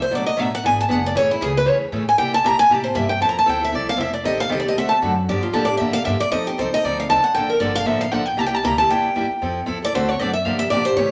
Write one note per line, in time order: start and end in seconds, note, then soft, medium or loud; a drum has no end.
0.00 0.11 C2 loud
0.00 0.12 C5 medium
0.11 0.25 B1 medium
0.11 0.29 B2 medium
0.11 0.29 F#3 medium
0.11 0.30 A3 medium
0.11 0.30 D4 medium
0.11 0.30 F#4 medium
0.15 0.26 D5 medium
0.26 0.40 D#5 medium
0.26 muted upright bass stroke soft
0.37 0.63 A1 medium
0.37 0.47 B2 medium
0.37 0.47 F#3 medium
0.37 0.47 A3 loud
0.37 0.48 D4 medium
0.37 0.48 F#4 medium
0.37 0.52 E5 medium
0.55 0.65 F#5 loud
0.63 0.89 G#1 medium
0.63 0.82 E3 medium
0.63 0.82 B3 medium
0.63 0.82 D4 medium
0.63 0.82 G#4 medium
0.63 0.78 G#5 loud
0.81 0.91 A5 loud
0.88 1.14 F#1 loud
0.88 0.99 E3 medium
0.88 0.99 B3 loud
0.88 0.99 D4 medium
0.88 1.00 G#4 medium
0.88 1.04 F#5 medium
1.06 1.16 D5 medium
1.15 1.40 A1 medium
1.15 1.33 C#3 medium
1.15 1.33 E3 medium
1.15 1.33 A3 medium
1.15 1.33 C#4 medium
1.15 1.33 G#4 medium
1.15 1.30 C#5 loud
1.31 1.42 E4 medium
1.41 1.65 C#2 loud
1.41 1.51 C#3 medium
1.41 1.51 E3 medium
1.41 1.51 A3 medium
1.41 1.52 C#4 medium
1.41 1.55 G#4 medium
1.41 1.52 G#4 loud
1.57 1.68 B4 medium
1.66 1.91 E2 medium
1.66 1.84 C#3 medium
1.66 1.84 E3 medium
1.66 1.85 A3 medium
1.66 1.84 C#4 medium
1.66 1.85 G#4 medium
1.66 1.76 C#5 loud
1.92 2.17 A2 loud
1.92 2.02 C#3 medium
1.92 2.02 E3 medium
1.92 2.03 A3 medium
1.92 2.03 C#4 medium
1.92 2.03 G#4 loud
2.09 2.18 G#5 loud
2.17 2.36 C3 medium
2.17 2.43 C3 medium
2.17 2.36 G3 medium
2.17 2.36 A#3 medium
2.17 2.36 E4 medium
2.17 2.36 G4 medium
2.17 2.32 G5 loud
2.34 2.45 A5 loud
2.44 2.69 A#2 loud
2.44 2.54 C3 medium
2.44 2.54 G3 loud
2.44 2.54 A#3 loud
2.44 2.55 E4 loud
2.44 2.54 G4 medium
2.44 2.59 A#5 loud
2.59 2.72 G#5 loud
2.69 2.95 A2 loud
2.69 2.88 C3 medium
2.69 2.88 G3 medium
2.69 2.88 A#3 medium
2.69 2.88 E4 medium
2.69 2.88 G4 medium
2.69 2.85 A5 loud
2.84 2.95 C5 medium
2.94 3.21 G2 loud
2.94 3.05 C3 medium
2.94 3.05 G3 medium
2.94 3.05 A#3 loud
2.94 3.05 E4 medium
2.94 3.05 G4 medium
2.94 3.09 E5 medium
3.09 3.21 G5 loud
3.20 3.47 F2 medium
3.20 3.39 F3 medium
3.20 3.39 C4 medium
3.20 3.39 E4 medium
3.20 3.39 A4 medium
3.20 3.28 A5 medium
3.29 3.38 A#5 loud
3.39 3.47 A5 loud
3.45 3.72 D2 medium
3.45 3.56 F3 medium
3.45 3.57 C4 medium
3.45 3.57 E4 medium
3.45 3.57 A4 loud
3.45 3.62 G5 medium
3.60 3.71 C4 soft
3.60 3.71 E4 medium
3.60 3.71 A4 medium
3.64 3.75 E5 loud
3.72 3.97 C2 medium
3.72 3.91 F3 medium
3.72 3.91 C4 medium
3.72 3.91 E4 medium
3.72 3.91 A4 medium
3.72 3.88 D5 medium
3.89 4.00 F5 loud
3.97 4.23 F1 loud
3.97 4.08 F3 medium
3.97 4.08 C4 medium
3.97 4.08 E4 medium
3.97 4.08 A4 medium
3.97 4.13 E5 medium
4.13 4.25 D5 medium
4.24 4.50 A1 medium
4.24 4.42 D#3 medium
4.24 4.43 G3 medium
4.24 4.43 C4 medium
4.24 4.43 G4 medium
4.24 4.43 A4 medium
4.24 4.39 D#5 loud
4.40 4.51 F5 loud
4.49 4.75 C2 medium
4.49 4.60 D#3 medium
4.49 4.60 G3 loud
4.49 4.60 C4 medium
4.49 4.60 G4 medium
4.49 4.61 A4 loud
4.49 4.59 D#5 medium
4.60 4.68 D5 medium
4.65 4.76 C4 soft
4.65 4.76 G4 soft
4.65 4.76 A4 medium
4.65 4.77 D#5 medium
4.76 5.01 D2 medium
4.76 4.95 D3 medium
4.76 4.95 A3 medium
4.76 4.95 C4 medium
4.76 4.95 F#4 medium
4.76 4.95 A4 medium
4.76 4.91 E5 medium
4.89 4.96 A5 loud
5.02 5.27 F#2 loud
5.02 5.12 D3 medium
5.02 5.12 A3 medium
5.02 5.13 C4 medium
5.02 5.13 F#4 medium
5.02 5.13 A4 loud
5.28 5.53 G2 medium
5.28 5.46 D3 medium
5.28 5.47 F3 medium
5.28 5.47 A#3 medium
5.28 5.47 D4 medium
5.28 5.47 G4 medium
5.28 5.43 D5 medium
5.43 5.54 F4 medium
5.53 5.79 A2 loud
5.53 5.64 D3 medium
5.53 5.64 F3 medium
5.53 5.64 A#3 medium
5.53 5.64 D4 loud
5.53 5.64 G4 loud
5.53 5.68 A4 medium
5.65 5.79 G4 medium
5.65 5.77 D5 loud
5.69 5.79 A#3 soft
5.69 5.79 D4 medium
5.77 5.94 A#2 medium
5.77 5.98 D3 medium
5.77 5.98 F3 medium
5.77 5.98 A#3 medium
5.77 5.98 D4 medium
5.77 5.98 G4 medium
5.77 5.92 E5 medium
5.93 6.05 F5 loud
5.93 muted upright bass stroke soft
6.04 6.19 G2 loud
6.04 6.15 D3 medium
6.04 6.15 F3 medium
6.04 6.15 A#3 medium
6.04 6.16 D4 medium
6.04 6.16 G4 medium
6.04 6.19 E5 medium
6.20 6.31 D5 loud
6.20 muted upright bass stroke soft
6.31 6.45 F2 medium
6.31 6.49 F3 medium
6.31 6.50 C4 medium
6.31 6.50 D#4 medium
6.31 6.50 A4 medium
6.31 6.45 D#5 loud
6.46 6.58 G4 medium
6.46 muted upright bass stroke soft
6.58 6.71 C2 medium
6.58 6.68 F3 medium
6.58 6.68 C4 medium
6.58 6.68 D#4 medium
6.58 6.68 A4 loud
6.58 6.72 C5 medium
6.72 6.84 C4 soft
6.72 6.84 D#4 medium
6.72 6.83 A4 medium
6.72 6.85 D#5 loud
6.72 muted upright bass stroke soft
6.83 7.08 D2 loud
6.83 7.02 F3 medium
6.83 7.02 C4 medium
6.83 7.02 D#4 medium
6.83 7.02 A4 medium
6.83 6.98 D5 medium
7.00 7.09 F5 medium
7.09 7.22 C2 loud
7.09 7.19 F3 medium
7.09 7.20 C4 medium
7.09 7.20 D#4 medium
7.09 7.20 A4 loud
7.09 7.23 A5 loud
7.23 7.34 F#5 medium
7.23 muted upright bass stroke soft
7.35 7.60 A#1 medium
7.35 7.53 D3 medium
7.35 7.53 F3 medium
7.35 7.53 A#3 medium
7.35 7.54 D4 medium
7.35 7.54 A4 medium
7.35 7.49 G5 loud
7.50 7.61 A#4 medium
7.60 7.85 G1 loud
7.60 7.71 D3 medium
7.60 7.71 F3 medium
7.60 7.71 A#3 loud
7.60 7.71 D4 loud
7.60 7.71 A4 loud
7.60 7.74 D5 loud
7.74 7.85 A#3 soft
7.74 7.85 D4 medium
7.74 7.85 A4 medium
7.74 7.86 F5 loud
7.85 8.11 A1 medium
7.85 8.04 D3 medium
7.85 8.04 F3 medium
7.85 8.04 A#3 medium
7.85 8.05 D4 medium
7.85 8.05 A4 medium
7.85 8.00 E5 loud
8.01 8.11 F5 loud
8.11 8.37 A#1 loud
8.11 8.22 D3 medium
8.11 8.22 F3 medium
8.11 8.22 A#3 medium
8.11 8.22 D4 medium
8.11 8.23 A4 medium
8.11 8.26 F#5 loud
8.26 8.39 G5 loud
8.37 8.63 C2 medium
8.37 8.56 C3 medium
8.37 8.55 G3 medium
8.37 8.56 A#3 medium
8.37 8.56 E4 medium
8.37 8.56 G4 medium
8.37 8.46 A5 loud
8.46 8.55 G5 medium
8.55 8.63 A5 medium
8.63 8.89 D2 loud
8.63 8.74 C3 medium
8.63 8.74 G3 medium
8.63 8.74 A#3 loud
8.63 8.74 E4 medium
8.63 8.74 G4 loud
8.63 8.78 A#5 loud
8.78 8.88 A#3 soft
8.78 8.89 E4 medium
8.78 8.89 G4 medium
8.78 8.90 A5 loud
8.89 9.03 E2 medium
8.89 9.08 C3 medium
8.89 9.08 G3 medium
8.89 9.08 A#3 medium
8.89 9.08 E4 medium
8.89 9.08 G4 medium
8.89 9.64 G5 loud
9.04 muted upright bass stroke soft
9.15 9.29 G2 loud
9.15 9.25 C3 medium
9.15 9.26 G3 medium
9.15 9.26 A#3 medium
9.15 9.26 E4 medium
9.15 9.26 G4 loud
9.30 muted upright bass stroke soft
9.42 9.67 F2 medium
9.42 9.60 F3 medium
9.42 9.60 C4 medium
9.42 9.60 E4 medium
9.42 9.60 A4 medium
9.66 9.93 E2 medium
9.66 9.77 F3 loud
9.66 9.77 C4 medium
9.66 9.77 E4 medium
9.66 9.77 A4 loud
9.82 9.94 C4 soft
9.82 9.94 E4 medium
9.82 9.93 A4 medium
9.82 9.94 D5 loud
9.94 10.19 D2 loud
9.94 10.12 D3 medium
9.94 10.12 A3 medium
9.94 10.12 C4 medium
9.94 10.12 F#4 medium
9.94 10.12 A4 medium
9.94 10.09 C5 loud
10.09 10.19 C#5 loud
10.19 10.45 F#2 loud
10.19 10.30 D3 medium
10.19 10.30 A3 medium
10.19 10.30 C4 medium
10.19 10.30 F#4 medium
10.19 10.30 A4 loud
10.19 10.33 D5 loud
10.33 10.46 E5 medium
10.45 10.70 G2 medium
10.45 10.63 D3 medium
10.45 10.63 F3 medium
10.45 10.64 A#3 medium
10.45 10.64 D4 medium
10.45 10.64 G4 medium
10.45 10.59 F5 loud
10.59 10.70 E5 loud
10.70 10.96 A#2 loud
10.70 10.81 D3 loud
10.70 10.82 F3 medium
10.70 10.82 A#3 medium
10.70 10.82 D4 loud
10.70 10.82 G4 loud
10.70 10.84 D5 loud
10.85 10.98 A#3 medium
10.85 10.97 D4 soft
10.85 10.97 G4 medium
10.85 10.96 C5 loud
10.97 11.11 A2 loud
10.97 11.11 C#3 medium
10.97 11.11 E3 medium
10.97 11.11 A3 medium
10.97 11.11 C#4 medium
10.97 11.11 G4 medium
10.97 11.11 C#5 loud